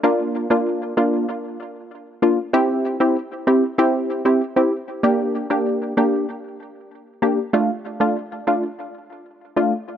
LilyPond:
\new Staff \with { instrumentName = "Synth stab" } { \time 4/4 \key d \minor \tempo 4 = 96 <bes d' f'>8. <bes d' f'>8. <bes d' f'>8 r4. <bes d' f'>16 r16 | <c' e' g'>8. <c' e' g'>16 r8 <c' e' g'>16 r16 <c' e' g'>8. <c' e' g'>16 r16 <c' e' g'>16 r8 | <bes d' g'>8. <bes d' g'>8. <bes d' g'>8 r4. <bes d' g'>16 r16 | <a d' f'>16 r8 <a d' f'>16 r8 <a d' f'>16 r4. <a d' f'>16 r8 | }